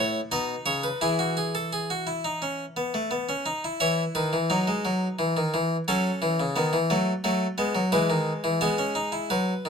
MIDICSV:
0, 0, Header, 1, 2, 480
1, 0, Start_track
1, 0, Key_signature, 4, "major"
1, 0, Tempo, 696864
1, 702, Time_signature, 4, 2, 24, 8
1, 3105, Tempo, 685714
1, 6733, End_track
2, 0, Start_track
2, 0, Title_t, "Harpsichord"
2, 0, Program_c, 0, 6
2, 0, Note_on_c, 0, 45, 72
2, 0, Note_on_c, 0, 64, 72
2, 0, Note_on_c, 0, 73, 81
2, 128, Note_off_c, 0, 45, 0
2, 129, Note_off_c, 0, 73, 0
2, 205, Note_off_c, 0, 64, 0
2, 217, Note_on_c, 0, 63, 68
2, 218, Note_on_c, 0, 47, 68
2, 219, Note_on_c, 0, 75, 83
2, 368, Note_off_c, 0, 47, 0
2, 368, Note_off_c, 0, 75, 0
2, 453, Note_on_c, 0, 49, 67
2, 453, Note_on_c, 0, 73, 82
2, 573, Note_off_c, 0, 73, 0
2, 575, Note_on_c, 0, 71, 72
2, 605, Note_off_c, 0, 49, 0
2, 685, Note_off_c, 0, 63, 0
2, 695, Note_off_c, 0, 71, 0
2, 699, Note_on_c, 0, 52, 68
2, 699, Note_on_c, 0, 64, 70
2, 700, Note_on_c, 0, 68, 66
2, 817, Note_off_c, 0, 64, 0
2, 820, Note_on_c, 0, 66, 64
2, 935, Note_off_c, 0, 68, 0
2, 938, Note_off_c, 0, 66, 0
2, 944, Note_on_c, 0, 68, 65
2, 1060, Note_off_c, 0, 68, 0
2, 1066, Note_on_c, 0, 69, 59
2, 1182, Note_off_c, 0, 69, 0
2, 1189, Note_on_c, 0, 68, 68
2, 1303, Note_off_c, 0, 68, 0
2, 1311, Note_on_c, 0, 66, 65
2, 1424, Note_on_c, 0, 64, 63
2, 1425, Note_off_c, 0, 66, 0
2, 1542, Note_off_c, 0, 64, 0
2, 1546, Note_on_c, 0, 63, 66
2, 1663, Note_off_c, 0, 63, 0
2, 1667, Note_on_c, 0, 61, 62
2, 1815, Note_off_c, 0, 61, 0
2, 1905, Note_on_c, 0, 59, 68
2, 2022, Note_off_c, 0, 59, 0
2, 2026, Note_on_c, 0, 57, 66
2, 2141, Note_on_c, 0, 59, 68
2, 2142, Note_off_c, 0, 57, 0
2, 2260, Note_off_c, 0, 59, 0
2, 2264, Note_on_c, 0, 61, 66
2, 2357, Note_off_c, 0, 52, 0
2, 2381, Note_on_c, 0, 63, 70
2, 2382, Note_off_c, 0, 61, 0
2, 2500, Note_off_c, 0, 63, 0
2, 2510, Note_on_c, 0, 64, 65
2, 2614, Note_off_c, 0, 64, 0
2, 2619, Note_on_c, 0, 73, 76
2, 2621, Note_on_c, 0, 52, 92
2, 2622, Note_on_c, 0, 64, 69
2, 2769, Note_off_c, 0, 73, 0
2, 2771, Note_off_c, 0, 52, 0
2, 2859, Note_on_c, 0, 51, 83
2, 2859, Note_on_c, 0, 71, 65
2, 2977, Note_off_c, 0, 51, 0
2, 2982, Note_on_c, 0, 52, 78
2, 3087, Note_off_c, 0, 64, 0
2, 3098, Note_off_c, 0, 52, 0
2, 3099, Note_on_c, 0, 63, 68
2, 3100, Note_on_c, 0, 54, 84
2, 3218, Note_off_c, 0, 54, 0
2, 3222, Note_on_c, 0, 56, 83
2, 3340, Note_off_c, 0, 56, 0
2, 3343, Note_on_c, 0, 54, 80
2, 3493, Note_off_c, 0, 54, 0
2, 3580, Note_on_c, 0, 52, 93
2, 3700, Note_off_c, 0, 52, 0
2, 3706, Note_on_c, 0, 51, 84
2, 3823, Note_off_c, 0, 51, 0
2, 3826, Note_on_c, 0, 52, 101
2, 3975, Note_off_c, 0, 52, 0
2, 4036, Note_off_c, 0, 71, 0
2, 4037, Note_off_c, 0, 63, 0
2, 4066, Note_on_c, 0, 54, 98
2, 4067, Note_on_c, 0, 69, 77
2, 4068, Note_on_c, 0, 61, 78
2, 4214, Note_off_c, 0, 54, 0
2, 4302, Note_on_c, 0, 52, 105
2, 4420, Note_off_c, 0, 52, 0
2, 4427, Note_on_c, 0, 49, 89
2, 4530, Note_off_c, 0, 61, 0
2, 4539, Note_on_c, 0, 59, 82
2, 4541, Note_off_c, 0, 49, 0
2, 4544, Note_on_c, 0, 51, 104
2, 4659, Note_off_c, 0, 51, 0
2, 4660, Note_on_c, 0, 52, 92
2, 4687, Note_off_c, 0, 59, 0
2, 4776, Note_off_c, 0, 52, 0
2, 4781, Note_on_c, 0, 57, 78
2, 4782, Note_on_c, 0, 54, 90
2, 4928, Note_off_c, 0, 57, 0
2, 4929, Note_off_c, 0, 54, 0
2, 5018, Note_on_c, 0, 54, 75
2, 5021, Note_on_c, 0, 57, 95
2, 5166, Note_off_c, 0, 54, 0
2, 5168, Note_off_c, 0, 57, 0
2, 5254, Note_on_c, 0, 59, 68
2, 5256, Note_on_c, 0, 56, 97
2, 5372, Note_on_c, 0, 54, 82
2, 5373, Note_off_c, 0, 56, 0
2, 5404, Note_off_c, 0, 59, 0
2, 5468, Note_off_c, 0, 69, 0
2, 5491, Note_off_c, 0, 54, 0
2, 5496, Note_on_c, 0, 52, 98
2, 5496, Note_on_c, 0, 71, 83
2, 5497, Note_on_c, 0, 56, 74
2, 5612, Note_off_c, 0, 52, 0
2, 5617, Note_on_c, 0, 51, 91
2, 5766, Note_off_c, 0, 51, 0
2, 5857, Note_on_c, 0, 52, 92
2, 5963, Note_off_c, 0, 56, 0
2, 5963, Note_off_c, 0, 71, 0
2, 5974, Note_off_c, 0, 52, 0
2, 5977, Note_on_c, 0, 56, 85
2, 5977, Note_on_c, 0, 59, 71
2, 5977, Note_on_c, 0, 68, 65
2, 6094, Note_off_c, 0, 59, 0
2, 6099, Note_on_c, 0, 61, 74
2, 6216, Note_off_c, 0, 61, 0
2, 6216, Note_on_c, 0, 63, 73
2, 6335, Note_off_c, 0, 63, 0
2, 6335, Note_on_c, 0, 64, 63
2, 6447, Note_off_c, 0, 56, 0
2, 6447, Note_off_c, 0, 68, 0
2, 6455, Note_off_c, 0, 64, 0
2, 6461, Note_on_c, 0, 71, 66
2, 6462, Note_on_c, 0, 54, 78
2, 6612, Note_off_c, 0, 54, 0
2, 6707, Note_on_c, 0, 51, 70
2, 6733, Note_off_c, 0, 51, 0
2, 6733, Note_off_c, 0, 71, 0
2, 6733, End_track
0, 0, End_of_file